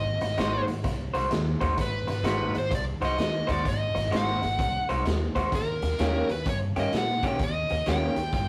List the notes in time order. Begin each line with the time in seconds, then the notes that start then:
Already playing: G#1 D#5
0.21 G#1, muted clean electric guitar stroke, snare, closed hi-hat
0.38 G#1 G#3 D#4 F#4 C5, snare, closed hi-hat
0.68 G#1, muted clean electric guitar stroke, closed hi-hat
0.84 C2, muted clean electric guitar stroke, kick, snare, closed hi-hat
1.14 C2 G#3 D#4 F#4 C5, closed hi-hat
1.31 D#2, muted clean electric guitar stroke, snare, closed hi-hat
1.61 D#2 G#3 D#4 F#4 C5, kick, closed hi-hat
1.77 G#1 B4, muted clean electric guitar stroke, kick, snare, closed hi-hat
2.07 G#1, muted clean electric guitar stroke, snare, closed hi-hat
2.23 G#1 G#3 D#4 F#4 C5, snare, closed hi-hat
2.54 G#1 C5, muted clean electric guitar stroke, closed hi-hat
2.70 C2, muted clean electric guitar stroke, kick, closed hi-hat
2.75 D5
3.01 C2 G#3 D#4 F#4 C5, closed hi-hat
3.05 D#5
3.17 D#2, muted clean electric guitar stroke, snare, closed hi-hat
3.47 D#2 G#3 D#4 F#4 C5, kick, snare, closed hi-hat
3.52 D5
3.64 G#1, muted clean electric guitar stroke, kick, closed hi-hat
3.69 D#5
3.95 G#1, muted clean electric guitar stroke, snare, closed hi-hat
4.11 G#1 G#3 D#4 F#4 C5, snare, closed hi-hat
4.16 F#5
4.42 G#1, muted clean electric guitar stroke, closed hi-hat
4.59 C2, muted clean electric guitar stroke, kick, closed hi-hat
4.89 C2 G#3 D#4 F#4 C5, closed hi-hat
5.05 D#2, muted clean electric guitar stroke, snare, closed hi-hat
5.35 D#2 G#3 D#4 F#4 C5, kick, snare, closed hi-hat
5.52 D#2 A#4, muted clean electric guitar stroke, kick, snare, closed hi-hat
5.82 D#2, muted clean electric guitar stroke, snare, closed hi-hat
5.99 D#2 D#3 A#3 C#4 G4, snare, closed hi-hat
6.29 D#2 B4, muted clean electric guitar stroke, closed hi-hat
6.46 G2 C#5, muted clean electric guitar stroke, kick, closed hi-hat
6.76 G2 D#3 A#3 C#4 G4 D#5, closed hi-hat
6.93 A#2, muted clean electric guitar stroke, snare, closed hi-hat
6.97 F#5
7.23 A#2 D#3 A#3 C#4 G4, kick, snare, closed hi-hat
7.27 G5
7.39 D#2, muted clean electric guitar stroke, kick, closed hi-hat
7.44 D#5
7.70 D#2, muted clean electric guitar stroke, closed hi-hat
7.86 D#2 D#3 A#3 C#4 G4 G5, snare, closed hi-hat
8.16 D#2, muted clean electric guitar stroke, closed hi-hat
8.32 G2, muted clean electric guitar stroke, kick, snare, closed hi-hat